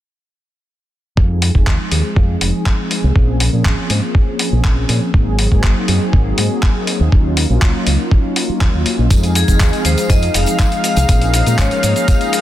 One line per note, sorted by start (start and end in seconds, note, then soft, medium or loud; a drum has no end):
1.17 1.49 F2 medium
1.17 1.52 F3 medium
1.17 1.52 G#3 medium
1.17 1.52 C4 medium
1.17 1.52 D#4 medium
1.17 1.52 G#4 medium
1.17 kick loud
1.42 open hi-hat medium
1.54 1.64 F1 medium
1.54 3.12 F3 medium
1.54 3.12 G#3 medium
1.54 3.13 C4 medium
1.54 3.13 D#4 medium
1.54 3.13 G#4 loud
1.54 kick medium
1.67 1.76 D#2 medium
1.67 kick loud
1.67 clap loud
1.91 2.01 D#2 medium
1.91 open hi-hat medium
2.16 2.35 F2 loud
2.16 kick loud
2.41 2.50 F1 medium
2.41 open hi-hat medium
2.66 kick loud
2.66 clap loud
2.91 open hi-hat medium
3.04 3.12 C2 medium
3.15 3.48 A#1 medium
3.15 3.50 F3 medium
3.15 3.50 A#3 medium
3.15 3.50 C4 medium
3.15 3.50 C#4 medium
3.15 3.50 G#4 medium
3.15 kick loud
3.40 open hi-hat medium
3.52 3.62 A#2 medium
3.52 5.11 F3 loud
3.52 5.11 A#3 medium
3.52 5.11 C4 medium
3.52 5.11 C#4 medium
3.52 5.12 G#4 loud
3.65 3.74 G#1 medium
3.65 kick loud
3.65 clap loud
3.90 3.99 G#2 medium
3.90 open hi-hat medium
4.15 kick loud
4.39 open hi-hat loud
4.52 4.84 A#1 medium
4.64 kick loud
4.64 clap loud
4.89 4.98 A#2 medium
4.89 open hi-hat medium
5.14 5.46 G#1 medium
5.14 5.48 F#3 medium
5.14 5.48 A#3 medium
5.14 5.49 C4 medium
5.14 5.49 D#4 medium
5.14 5.49 G#4 medium
5.14 kick loud
5.39 open hi-hat loud
5.50 5.60 G#2 medium
5.50 7.09 F#3 loud
5.50 7.09 A#3 medium
5.50 7.09 C4 medium
5.50 7.10 D#4 medium
5.50 7.10 G#4 loud
5.50 kick medium
5.64 5.73 F#1 loud
5.64 kick loud
5.64 clap loud
5.88 5.98 F#2 medium
5.88 open hi-hat medium
6.13 6.31 G#1 medium
6.13 kick loud
6.38 6.47 G#2 medium
6.38 open hi-hat loud
6.63 kick loud
6.63 clap loud
6.87 open hi-hat medium
7.00 7.09 D#2 medium
7.12 7.44 D#2 medium
7.12 7.46 F#3 medium
7.12 7.47 A#3 medium
7.12 7.47 C#4 medium
7.12 7.47 D#4 medium
7.12 7.47 F4 medium
7.12 kick loud
7.37 open hi-hat loud
7.49 7.59 A#1 medium
7.49 9.07 F#3 medium
7.49 9.08 A#3 medium
7.49 9.08 C#4 medium
7.49 9.08 D#4 medium
7.49 9.08 F4 loud
7.62 kick loud
7.62 clap loud
7.87 7.96 C#2 medium
7.87 open hi-hat medium
8.11 kick loud
8.36 open hi-hat loud
8.49 muted fingered electric bass stroke soft
8.61 8.70 D#2 medium
8.61 kick loud
8.61 clap loud
8.74 8.83 D#2 medium
8.86 muted fingered electric bass stroke soft
8.86 open hi-hat medium
8.99 9.07 A#1 medium
9.10 9.43 F2 medium
9.10 9.45 F3 medium
9.10 9.45 G#3 medium
9.10 9.45 C4 medium
9.10 12.41 D#4 medium
9.10 9.45 D#4 medium
9.10 9.45 G#4 medium
9.10 12.41 F5 medium
9.10 kick loud
9.10 closed hi-hat medium
9.10 tambourine medium
9.10 cabasa soft
9.23 closed hi-hat soft
9.23 tambourine soft
9.35 9.87 G#4 medium
9.35 open hi-hat loud
9.35 cabasa medium
9.47 9.57 F1 medium
9.47 11.06 F3 medium
9.47 11.06 G#3 medium
9.47 11.06 C4 medium
9.47 11.06 D#4 medium
9.47 11.07 G#4 loud
9.47 kick medium
9.47 closed hi-hat soft
9.47 tambourine medium
9.47 cabasa soft
9.59 9.69 D#2 loud
9.59 kick loud
9.59 clap loud
9.59 closed hi-hat medium
9.59 tambourine medium
9.59 cabasa soft
9.73 closed hi-hat soft
9.73 tambourine soft
9.85 9.94 D#2 medium
9.85 10.08 C5 medium
9.85 open hi-hat medium
9.85 cabasa medium
9.97 closed hi-hat soft
9.97 tambourine medium
9.97 cabasa soft
10.09 10.28 F2 loud
10.09 10.36 D#5 loud
10.09 kick loud
10.09 closed hi-hat medium
10.09 tambourine medium
10.09 cabasa soft
10.22 closed hi-hat soft
10.22 tambourine soft
10.34 10.44 F1 medium
10.34 10.83 F5 loud
10.34 open hi-hat loud
10.34 cabasa medium
10.46 closed hi-hat soft
10.46 tambourine medium
10.46 cabasa soft
10.58 kick loud
10.58 clap loud
10.58 closed hi-hat medium
10.58 tambourine medium
10.58 cabasa soft
10.72 closed hi-hat soft
10.72 tambourine soft
10.84 11.61 F5 loud
10.84 open hi-hat medium
10.84 cabasa medium
10.96 11.05 C2 medium
10.96 closed hi-hat soft
10.96 tambourine medium
10.96 cabasa soft
11.08 11.41 A#1 medium
11.08 11.43 F3 medium
11.08 11.43 A#3 medium
11.08 11.43 C4 medium
11.08 11.43 C#4 medium
11.08 11.44 G#4 medium
11.08 kick loud
11.08 closed hi-hat medium
11.08 tambourine medium
11.08 cabasa soft
11.21 closed hi-hat soft
11.21 tambourine soft
11.34 open hi-hat loud
11.34 cabasa medium
11.45 11.55 A#2 medium
11.45 12.41 F3 medium
11.45 12.41 G#3 medium
11.45 12.41 A#3 medium
11.45 12.41 C#4 medium
11.45 12.41 G#4 loud
11.45 closed hi-hat soft
11.45 tambourine medium
11.45 cabasa soft
11.58 11.68 G#1 medium
11.58 12.10 C#5 medium
11.58 kick loud
11.58 clap loud
11.58 closed hi-hat medium
11.58 tambourine medium
11.58 cabasa soft
11.71 closed hi-hat soft
11.71 tambourine soft
11.83 11.93 G#2 medium
11.83 open hi-hat medium
11.83 cabasa medium
11.96 closed hi-hat soft
11.96 tambourine medium
11.96 cabasa soft
12.08 12.41 F5 loud
12.08 kick loud
12.08 closed hi-hat medium
12.08 tambourine medium
12.08 cabasa soft
12.21 closed hi-hat soft
12.21 tambourine soft
12.33 open hi-hat loud
12.33 cabasa medium